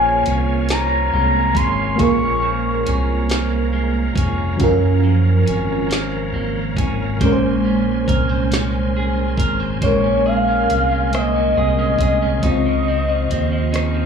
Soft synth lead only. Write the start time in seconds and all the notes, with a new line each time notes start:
Already playing: G#5
0.71 A#5
1.13 A#5
1.56 C6
1.99 C#6
9.83 C#5
10.26 F5
11.14 D#5
12.44 D#5